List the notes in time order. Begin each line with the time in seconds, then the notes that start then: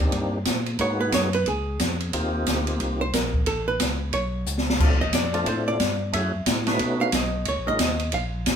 Already playing: D#2 A#3 C4 D4 D#4 G4
0.12 G2, kick, ride
0.45 A#2, kick, snare, hi-hat pedal, ride
0.66 ride
0.79 G#2 A#3 B3 D#4 F#4 G#4 C#5, kick, ride
1.01 B4
1.12 F#2 C#5, kick, snare, hi-hat pedal, ride
1.33 B4, ride
1.46 C#2 G#4, kick, ride
1.80 F2, kick, snare, hi-hat pedal, ride
2.00 ride
2.13 D#2 A#3 C4 D#4 F4 G4, kick, ride
2.46 D2, kick, snare, hi-hat pedal, ride
2.67 ride
2.80 C2, kick, ride
3.01 C5
3.13 A#1 A#4, kick, snare, hi-hat pedal, ride
3.34 kick
3.46 A1 A4, ride
3.68 B4
3.80 C#2, kick, snare, hi-hat pedal, ride
4.13 B1 C#5, kick, ride
4.46 C#2, hi-hat pedal
4.58 snare
4.69 snare
4.80 D2 A3 C4 D4 F4 A4, kick, crash
4.91 C2
5.01 A1 D#5
5.13 F2 D5, kick, snare, hi-hat pedal, ride
5.34 A3 C4 D4 F4 A4, ride
5.46 A2 C5, kick, ride
5.68 D5
5.80 G2, kick, snare, hi-hat pedal, ride
6.13 F#2 A3 C#4 E4 F#4 G#4 E5, kick, ride
6.35 F#2
6.46 A2, kick, snare, hi-hat pedal, ride
6.67 A3 C#4 D#4 F#4 B4, snare, ride
6.79 B2, kick, ride
7.01 F5
7.12 B1 D#5, kick, snare, hi-hat pedal, ride
7.45 C#2 C#5, kick, ride
7.58 A#1
7.66 G#1 G#3 C#4 D#4 F4 A#4 D#5
7.79 D#2, kick, snare, hi-hat pedal, ride
8.00 ride
8.12 A#1 F5, kick, ride
8.46 G#1, kick, snare, hi-hat pedal, ride